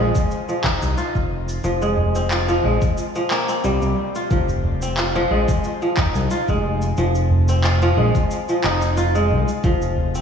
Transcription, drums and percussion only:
0.15 kick loud
0.15 shaker medium
0.31 shaker medium
0.49 shaker soft
0.64 kick loud
0.64 clap medium
0.64 udu medium
0.82 shaker medium
0.98 shaker medium
1.15 kick medium
1.15 shaker soft
1.49 shaker medium
1.64 shaker soft
1.82 shaker soft
1.97 udu medium
2.15 shaker medium
2.31 clap medium
2.31 shaker medium
2.49 shaker soft
2.82 kick medium
2.82 shaker medium
2.98 shaker medium
3.15 shaker soft
3.31 clap medium
3.49 shaker medium
3.64 shaker medium
3.82 shaker soft
4.15 shaker medium
4.31 kick loud
4.31 shaker soft
4.49 udu medium
4.49 shaker soft
4.63 udu medium
4.82 shaker medium
4.97 clap medium
4.97 shaker medium
5.15 shaker soft
5.48 kick medium
5.48 shaker medium
5.64 shaker medium
5.82 shaker soft
5.97 kick loud
5.97 clap medium
5.97 udu medium
6.15 shaker medium
6.31 shaker medium
6.48 kick medium
6.48 shaker soft
6.82 shaker medium
6.97 shaker medium
7.15 shaker soft
7.30 udu medium
7.48 shaker medium
7.64 clap medium
7.64 shaker soft
7.82 shaker soft
8.15 kick medium
8.15 shaker medium
8.31 shaker medium
8.49 shaker soft
8.64 clap medium
8.82 shaker medium
8.97 shaker medium
9.15 shaker soft
9.48 shaker medium
9.64 kick loud
9.64 shaker soft
9.81 udu medium
9.81 shaker soft
9.97 udu medium
10.15 shaker medium

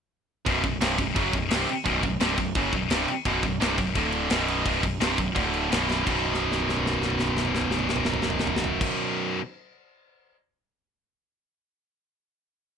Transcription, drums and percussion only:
0.46 kick loud
0.46 crash medium
0.64 kick loud
0.64 crash medium
0.81 snare loud
0.81 crash medium
0.98 kick medium
0.98 crash medium
1.16 kick loud
1.16 crash medium
1.33 kick medium
1.33 crash medium
1.51 snare loud
1.51 crash medium
1.69 crash medium
1.85 kick loud
1.85 crash medium
2.03 kick medium
2.03 crash medium
2.20 snare loud
2.20 crash medium
2.38 kick medium
2.38 crash medium
2.55 kick loud
2.55 crash medium
2.73 kick medium
2.73 crash medium
2.90 snare loud
2.90 crash medium
3.08 crash medium
3.25 kick loud
3.25 crash medium
3.43 kick medium
3.43 crash medium
3.61 snare loud
3.61 crash medium
3.78 kick medium
3.78 crash medium
3.95 kick loud
3.95 crash medium
4.12 crash medium
4.30 snare loud
4.30 crash medium
4.48 crash medium
4.66 kick loud
4.66 crash medium
4.83 kick medium
4.83 crash medium
5.01 snare loud
5.01 crash medium
5.18 kick medium
5.18 crash medium
5.36 kick loud
5.36 crash medium
5.54 crash medium
5.72 snare loud
5.72 crash medium
5.91 snare medium
6.07 kick loud
6.07 crash medium
6.25 floor tom soft
6.34 snare soft
6.42 floor tom soft
6.52 snare medium
6.60 floor tom medium
6.69 snare medium
6.76 floor tom medium
6.86 snare medium
6.93 floor tom medium
7.02 snare medium
7.10 floor tom medium
7.19 snare medium
7.27 floor tom medium
7.37 snare medium
7.45 floor tom medium
7.55 snare medium
7.61 floor tom medium
7.71 snare medium
7.79 floor tom medium
7.89 snare medium
7.96 floor tom medium
8.05 snare medium
8.14 floor tom medium
8.22 snare medium
8.30 floor tom medium
8.39 snare medium
8.47 floor tom medium
8.56 snare medium
8.64 floor tom medium
8.81 kick loud
8.81 crash medium

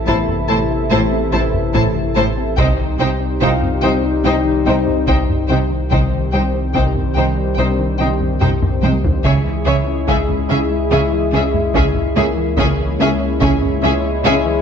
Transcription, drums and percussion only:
0.07 taiko medium
0.29 taiko low-mid soft
1.54 taiko low-mid medium
1.75 taiko medium
1.96 taiko low-mid medium
2.58 taiko medium
3.41 taiko medium
3.62 taiko low-mid soft
4.87 taiko low-mid medium
5.08 taiko medium
5.29 taiko low-mid medium
5.91 taiko medium
6.75 taiko medium
6.95 taiko low-mid soft
8.21 taiko low-mid medium
8.41 taiko low-mid medium
8.62 taiko low-mid medium
8.83 taiko high medium
9.04 taiko low loud
9.25 taiko medium
10.08 taiko medium
10.29 taiko low-mid soft
11.54 taiko low-mid medium
11.75 taiko medium
11.95 taiko low-mid medium
12.57 taiko medium
13.41 taiko medium
13.62 taiko low-mid soft

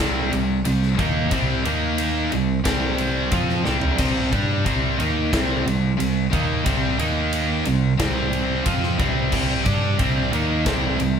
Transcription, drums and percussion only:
0.00 snare loud
0.00 ride loud
0.33 ride medium
0.65 ride loud
0.83 snare soft
0.99 kick loud
0.99 ride medium
1.31 kick loud
1.31 ride loud
1.65 ride medium
1.98 ride loud
2.32 ride medium
2.65 kick loud
2.65 snare loud
2.65 ride loud
2.98 ride medium
3.31 kick loud
3.31 ride loud
3.49 snare soft
3.65 snare medium
3.81 floor tom medium
3.98 kick loud
3.98 crash medium
3.98 ride medium
4.33 kick loud
4.33 ride medium
4.66 kick loud
4.66 ride medium
5.00 ride medium
5.33 kick loud
5.33 snare loud
5.33 ride loud
5.67 ride medium
6.00 ride loud
6.33 kick loud
6.33 ride medium
6.66 kick loud
6.66 ride loud
6.99 ride medium
7.33 ride loud
7.65 ride medium
7.99 kick loud
7.99 snare loud
7.99 ride loud
8.33 ride medium
8.66 kick loud
8.66 ride loud
8.83 snare soft
8.99 kick loud
8.99 ride medium
9.32 kick loud
9.32 crash loud
9.66 kick loud
9.66 ride medium
9.99 kick loud
9.99 ride medium
10.33 ride medium
10.66 kick loud
10.66 snare loud
10.66 ride loud
11.00 ride medium

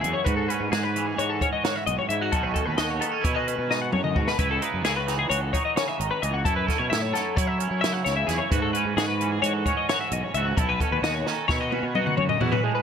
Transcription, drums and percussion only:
0.04 closed hi-hat medium
0.26 kick loud
0.26 closed hi-hat medium
0.50 closed hi-hat medium
0.73 snare loud
0.73 closed hi-hat medium
0.96 closed hi-hat medium
1.19 closed hi-hat medium
1.41 kick medium
1.41 closed hi-hat medium
1.64 snare loud
1.64 closed hi-hat medium
1.87 closed hi-hat medium
2.10 closed hi-hat medium
2.32 kick loud
2.32 closed hi-hat medium
2.55 kick medium
2.55 closed hi-hat medium
2.78 snare loud
2.78 closed hi-hat medium
3.02 closed hi-hat medium
3.24 kick loud
3.24 closed hi-hat medium
3.48 closed hi-hat medium
3.71 snare medium
3.92 mid tom medium
4.04 mid tom medium
4.16 kick medium
4.28 snare medium
4.39 kick loud
4.39 closed hi-hat medium
4.62 closed hi-hat medium
4.84 snare medium
4.84 closed hi-hat medium
5.08 snare soft
5.08 closed hi-hat medium
5.31 closed hi-hat medium
5.54 kick medium
5.54 closed hi-hat medium
5.77 snare loud
5.77 closed hi-hat medium
6.00 closed hi-hat medium
6.23 closed hi-hat medium
6.45 kick loud
6.45 closed hi-hat medium
6.69 kick medium
6.69 snare soft
6.69 closed hi-hat medium
6.92 snare loud
6.92 closed hi-hat medium
7.15 snare soft
7.15 closed hi-hat medium
7.37 kick loud
7.37 closed hi-hat medium
7.60 closed hi-hat medium
7.84 snare loud
7.84 closed hi-hat medium
8.06 snare soft
8.06 closed hi-hat medium
8.29 snare soft
8.29 closed hi-hat medium
8.52 kick loud
8.52 closed hi-hat medium
8.75 closed hi-hat medium
8.98 snare loud
8.98 closed hi-hat medium
9.21 closed hi-hat medium
9.43 closed hi-hat medium
9.66 kick medium
9.66 closed hi-hat medium
9.89 snare loud
9.89 closed hi-hat medium
10.11 closed hi-hat medium
10.34 closed hi-hat medium
10.57 kick loud
10.57 closed hi-hat medium
10.81 kick medium
10.81 closed hi-hat medium
11.04 snare loud
11.04 closed hi-hat medium
11.27 snare medium
11.49 kick loud
11.49 snare medium
11.72 high tom medium
11.95 mid tom medium
12.07 mid tom medium
12.17 mid tom medium
12.29 floor tom medium
12.41 floor tom medium
12.52 floor tom medium

